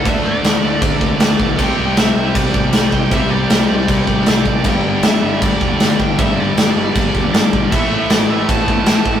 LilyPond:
<<
  \new Staff \with { instrumentName = "Lead electric guitar" } { \time 4/4 \key c \major \tempo 4 = 156 e''8 d''2~ d''8 d''4 | g''4 e''4 d''4. g''8 | e''8 d''2~ d''8 d''4 | g''4 e''4 d''4. g''8 |
e''8 d''2~ d''8 d''4 | e''4 d''8 e''8 a''2 | }
  \new Staff \with { instrumentName = "Tonewheel organ" } { \time 4/4 \key c \major <d' a' e''>1 | <c' g' d''>1~ | <c' g' d''>1 | <g d' a'>1~ |
<g d' a'>1 | <a e' b'>1 | }
  \new Staff \with { instrumentName = "Distorted electric guitar" } { \clef bass \time 4/4 \key c \major <d a d'>4. <d a d'>4. <d a d'>4 | <c g c'>4. <c g c'>4. <c g c'>4 | <c g c'>4. <c g c'>4. <c g c'>4 | <g, d g>4. <g, d g>4. <g, d g>4 |
<g, d g>4. <g, d g>4. <g, d g>4 | <a, e a>4. <a, e a>4. <a, e a>4 | }
  \new Staff \with { instrumentName = "Overdriven electric guitar" } { \clef bass \time 4/4 \key c \major <d a d'>1 | <c g c'>1 | <c g c'>1 | <g, d g>1 |
<g, d g>1 | <a, e a>1 | }
  \new Staff \with { instrumentName = "Picked electric bass" } { \clef bass \time 4/4 \key c \major d,8 d,8 d,8 d,8 d,8 c,8 d,8 b,,8 | c,8 c,8 c,8 c,8 c,8 a,,8 c,8 c,8 | c,8 c,8 c,8 c,8 c,8 a,,8 c,8 a,,8 | g,,8 g,,8 g,,8 g,,8 g,,8 e,,8 g,,8 g,,8 |
g,,8 g,,8 g,,8 g,,8 g,,8 e,,8 g,,8 b,,8 | a,,8 a,,8 a,,8 a,,8 a,,8 g,,8 a,,8 a,,8 | }
  \new DrumStaff \with { instrumentName = "Drums" } \drummode { \time 4/4 <cymc bd>4 <cymc sn>4 <cymc bd>8 bd8 <cymc sn>8 bd8 | <cymc bd>4 <cymc sn>4 <cymc bd>8 bd8 <cymc sn>8 bd8 | <cymc bd>4 <cymc sn>4 <cymc bd>8 bd8 <cymc sn>8 bd8 | <cymc bd>4 <cymc sn>4 <cymc bd>8 bd8 <cymc sn>8 bd8 |
<cymc bd>4 <cymc sn>4 <cymc bd>8 bd8 <cymc sn>8 bd8 | <cymc bd>4 <cymc sn>4 <cymc bd>8 bd8 <cymc sn>8 bd8 | }
>>